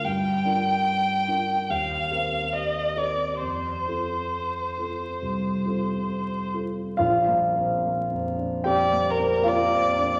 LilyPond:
<<
  \new Staff \with { instrumentName = "Violin" } { \time 4/4 \key bes \major \tempo 4 = 72 g''2 f''4 ees''8 d''8 | c''2.~ c''8 r8 | r2 d''8 bes'8 d''4 | }
  \new Staff \with { instrumentName = "Grand piano" } { \time 4/4 \key bes \major << { r1 | r1 | <f' f''>2 <g' g''>4 <f' f''>4 | } \\ { g,8 <d' f' bes'>4 <d' f' bes'>8 ees,8 <c' g' bes'>4 <c' g' bes'>8 | f,8 <c' f' a'>4 <c' f' a'>8 c,8 <c' f' a'>4 <c' f' a'>8 | \tuplet 3/2 { bes,,8 bes8 c'8 bes8 f,8 d'8 f,8 bes8 c'8 bes8 f,8 d'8 } | } >> }
>>